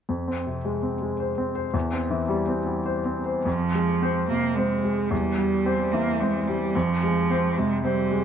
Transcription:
0.09 1.70 F2 soft
0.28 0.58 C4 soft
0.46 0.76 C3 soft
0.65 0.94 G#3 soft
0.83 1.12 C4 soft
1.02 1.31 G#3 soft
1.20 1.49 C5 soft
1.38 1.67 C4 soft
1.55 1.74 C5 soft
1.74 3.42 E2 soft
1.92 2.22 C4 soft
2.10 2.40 E3 soft
2.28 2.59 G3 soft
2.47 2.78 C4 soft
2.67 2.98 G3 soft
2.86 3.18 C5 soft
3.05 3.38 C4 soft
3.26 3.46 C5 soft
3.45 5.07 F2 soft
3.45 4.25 F3 soft
3.74 4.19 G#3 soft
4.02 4.27 C4 soft
4.02 4.27 C5 soft
4.29 4.73 C3 soft
4.29 4.57 A#3 soft
4.56 5.12 G#3 soft
4.56 4.81 C4 soft
4.56 4.82 C5 soft
4.84 5.11 G#3 soft
5.11 6.72 E2 soft
5.11 5.93 G3 soft
5.38 5.82 G3 soft
5.66 5.90 C4 soft
5.66 5.91 C5 soft
5.92 6.38 E3 soft
5.92 6.21 A#3 soft
6.20 6.49 G#3 soft
6.20 6.45 C4 soft
6.20 6.45 C5 soft
6.48 6.76 G3 soft
6.75 8.24 F2 soft
6.75 7.59 F3 medium
7.03 7.47 G#3 soft
7.30 7.55 C4 soft
7.30 7.55 C5 soft
7.57 8.01 C3 soft
7.57 7.84 G#3 soft
7.84 8.24 G3 soft
7.84 8.09 C4 soft
7.84 8.09 C5 soft
8.11 8.24 G#3 soft

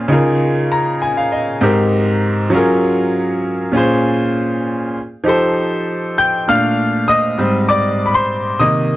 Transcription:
0.00 0.12 A#2 medium
0.00 0.13 C#4 medium
0.00 0.11 F4 medium
0.00 0.12 G#4 medium
0.00 0.13 C5 medium
0.08 1.58 C#3 medium
0.08 1.58 D#4 medium
0.08 1.59 F4 medium
0.12 1.60 G#4 medium
0.12 1.60 A#4 medium
0.72 1.00 A#5 medium
1.02 1.16 G#5 medium
1.17 1.31 F5 medium
1.32 1.60 D#5 medium
1.61 2.52 G#2 medium
1.61 2.53 C4 medium
1.61 2.53 D#4 medium
1.61 2.53 G4 medium
1.61 2.54 A#4 medium
2.50 3.70 F#3 medium
2.50 3.71 C#4 medium
2.50 3.72 F4 medium
2.54 3.73 G#4 medium
2.54 3.73 A#4 medium
3.72 4.92 A#2 medium
3.72 4.92 C#4 medium
3.72 4.93 F4 medium
3.76 4.94 G#4 medium
3.76 4.94 C5 medium
5.24 6.43 F3 medium
5.24 6.44 D#4 medium
5.24 6.45 G4 medium
5.28 6.46 A4 medium
5.28 6.46 C5 medium
6.18 6.46 G5 medium
6.18 6.49 G6 medium
6.48 6.88 A#2 medium
6.48 6.88 A3 medium
6.48 6.88 D4 medium
6.48 7.05 F5 medium
6.48 7.10 F6 loud
7.08 7.65 D#5 medium
7.08 7.70 D#6 loud
7.38 8.24 G#2 medium
7.38 8.25 G3 medium
7.38 8.25 C4 medium
7.68 8.05 D5 medium
7.68 8.08 D6 loud
8.06 8.13 B5 medium
8.14 8.57 C5 medium
8.14 8.61 C6 loud
8.59 8.97 C3 soft
8.59 8.97 D#3 medium
8.59 8.97 A#3 medium
8.59 8.97 D#5 medium
8.59 8.97 D#6 loud

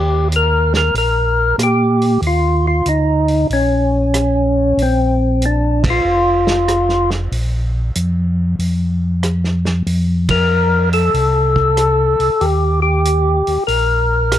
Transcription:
0.00 0.91 D#2 medium
0.00 0.28 G4 medium
0.32 closed hi-hat soft
0.36 0.73 A#4 medium
0.74 0.95 A#4 loud
0.74 snare soft
0.94 1.54 A#1 medium
0.94 1.56 A#4 loud
0.94 open hi-hat soft
1.58 2.18 A#2 medium
1.58 cross-stick medium
1.58 closed hi-hat medium
1.63 2.21 G4 medium
2.02 open hi-hat soft
2.22 2.82 D#2 medium
2.22 open hi-hat soft
2.27 2.66 F4 medium
2.67 2.88 F4 medium
2.86 3.46 D2 medium
2.86 3.47 D#4 medium
2.86 closed hi-hat soft
3.28 open hi-hat soft
3.50 4.73 A#1 medium
3.50 4.83 C#4 medium
3.50 open hi-hat soft
4.14 cross-stick medium
4.14 closed hi-hat medium
4.77 6.01 A#1 loud
4.77 open hi-hat soft
4.82 5.45 C4 medium
5.42 5.83 D4 medium
5.42 closed hi-hat soft
5.84 kick medium
5.84 ride medium
5.90 7.10 F4 loud
6.05 7.28 F1 medium
6.47 snare medium
6.68 cross-stick medium
6.68 closed hi-hat medium
6.89 snare soft
7.11 snare soft
7.32 7.92 A#1 medium
7.32 open hi-hat soft
7.95 8.55 F2 medium
7.95 closed hi-hat medium
8.59 9.82 F2 medium
8.59 open hi-hat soft
9.23 cross-stick medium
9.23 closed hi-hat soft
9.44 snare soft
9.65 snare soft
9.86 11.10 F2 medium
9.86 open hi-hat soft
10.29 10.89 A#4 medium
10.29 kick medium
10.29 ride medium
10.93 12.46 A4 loud
10.93 open hi-hat soft
11.14 12.16 C2 medium
11.14 open hi-hat soft
11.56 kick medium
11.77 cross-stick medium
11.77 closed hi-hat medium
12.19 12.30 C2 soft
12.19 open hi-hat soft
12.41 13.43 D#2 loud
12.41 12.80 G4 loud
12.41 open hi-hat soft
12.82 13.64 G4 medium
13.05 closed hi-hat soft
13.47 13.58 D#2 soft
13.47 open hi-hat soft
13.67 14.39 A#1 medium
13.67 14.39 A#4 medium
13.67 open hi-hat soft
14.32 cross-stick medium
14.32 closed hi-hat medium

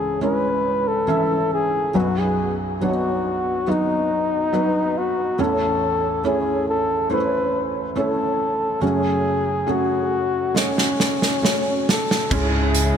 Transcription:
0.00 1.91 C#2 soft
0.00 1.91 G#2 soft
0.00 0.17 E3 soft
0.00 0.21 G#3 soft
0.00 0.21 C#4 soft
0.00 0.22 E4 soft
0.00 0.22 G#4 medium
0.00 0.22 C#5 medium
0.21 1.04 G#3 medium
0.21 1.04 C#4 soft
0.21 1.04 E4 soft
0.21 0.89 B4 medium
0.21 1.04 C#5 medium
0.87 1.52 A4 medium
1.07 1.90 E3 medium
1.07 1.90 C#4 soft
1.07 1.90 E4 soft
1.07 1.90 E5 medium
1.53 1.98 G#4 medium
1.94 5.34 B1 soft
1.94 5.35 F#2 soft
1.94 2.76 F#3 medium
1.94 2.77 B3 soft
1.94 2.77 D#4 soft
1.94 2.20 F#4 medium
1.94 2.77 B4 medium
2.19 2.55 G#4 medium
2.81 3.63 F#3 medium
2.81 3.63 B3 soft
2.81 2.88 D4 soft
2.81 3.71 F#4 medium
2.81 3.63 C#5 medium
2.88 3.66 D#4 medium
3.67 4.49 F#3 soft
3.67 4.49 B3 soft
3.67 4.49 D#4 soft
3.67 4.99 D#4 medium
3.67 4.49 F#4 medium
4.52 5.34 F#3 medium
4.52 5.34 B3 medium
4.52 5.34 D#4 soft
4.52 5.35 B4 medium
4.98 5.42 F#4 medium
5.38 8.78 A1 soft
5.38 8.78 E2 medium
5.38 6.20 A3 medium
5.38 6.20 C#4 medium
5.38 6.20 E4 medium
5.38 6.25 A4 medium
5.38 6.20 C#5 medium
6.24 7.06 A3 medium
6.24 7.06 C#4 medium
6.24 7.06 E4 medium
6.24 6.65 G#4 medium
6.24 7.06 C#5 medium
6.69 7.08 A4 medium
7.09 7.91 A3 medium
7.09 7.92 C#4 soft
7.09 7.92 E4 soft
7.09 7.66 B4 medium
7.09 7.17 C5 soft
7.17 7.95 C#5 medium
7.95 8.77 A3 medium
7.95 8.78 C#4 soft
7.95 8.78 E4 soft
7.95 8.79 A4 medium
7.95 8.78 C#5 medium
8.81 12.27 F#2 soft
8.81 12.27 C#3 soft
8.81 9.63 A3 medium
8.81 9.63 C#4 soft
8.81 9.63 F#4 soft
8.81 9.72 G#4 medium
8.81 9.63 C#5 medium
9.66 10.50 A3 soft
9.66 10.50 C#4 soft
9.66 10.50 F#4 soft
9.66 10.59 F#4 medium
9.66 10.50 G#4 medium
10.54 11.39 A3 soft
10.54 11.39 C#4 soft
10.54 11.89 C#4 medium
10.54 11.39 F#4 soft
10.54 11.39 D#5 soft
10.54 snare soft
10.78 snare soft
11.00 snare medium
11.22 snare soft
11.42 12.27 A3 soft
11.42 12.27 C#4 soft
11.42 12.27 F#4 soft
11.42 12.27 C#5 medium
11.42 snare medium
11.89 12.29 A4 medium
11.89 snare medium
12.11 snare medium
12.30 12.93 C#2 medium
12.30 12.97 G#2 soft
12.30 12.97 C#3 medium
12.30 12.97 G#3 medium
12.30 12.97 C#4 medium
12.30 12.97 E4 medium
12.30 12.97 G#4 medium
12.30 12.97 C#5 medium
12.30 kick medium
12.30 crash medium
12.74 closed hi-hat medium

